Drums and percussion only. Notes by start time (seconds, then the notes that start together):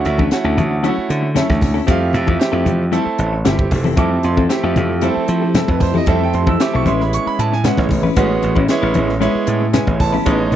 0.05 closed hi-hat
0.18 kick, high conga
0.31 snare, closed hi-hat
0.58 closed hi-hat, high conga, low conga
0.84 closed hi-hat
1.10 closed hi-hat
1.36 snare, closed hi-hat, low conga
1.50 kick, snare, high conga
1.61 kick, snare, open hi-hat, low conga
1.88 kick, closed hi-hat
2.13 closed hi-hat, low conga
2.27 kick, high conga
2.41 snare, closed hi-hat
2.66 closed hi-hat, high conga, low conga
2.93 closed hi-hat
3.18 closed hi-hat
3.45 snare, closed hi-hat, low conga
3.59 kick
3.71 kick, open hi-hat, low conga
3.84 high conga
3.97 kick, closed hi-hat
4.23 closed hi-hat
4.37 kick, high conga
4.50 snare, closed hi-hat
4.76 closed hi-hat, high conga, low conga
5.01 closed hi-hat
5.28 closed hi-hat
5.54 snare, closed hi-hat, low conga
5.68 kick, high conga
5.80 kick, open hi-hat, low conga
5.94 high conga
6.06 kick, closed hi-hat
6.33 closed hi-hat
6.47 kick, high conga
6.60 snare, closed hi-hat
6.86 closed hi-hat, high conga, low conga
7.01 snare
7.13 closed hi-hat
7.39 closed hi-hat
7.53 snare
7.64 snare, closed hi-hat, low conga
7.77 kick, snare, high conga
7.89 kick, open hi-hat, low conga
8.03 high conga
8.16 kick, closed hi-hat
8.43 closed hi-hat
8.56 kick, high conga
8.68 snare, closed hi-hat
8.94 closed hi-hat, high conga, low conga
9.09 snare
9.22 closed hi-hat
9.47 closed hi-hat
9.74 snare, closed hi-hat, low conga
9.87 kick, high conga
10.00 kick, open hi-hat, low conga
10.14 high conga
10.26 kick, closed hi-hat
10.52 closed hi-hat, low conga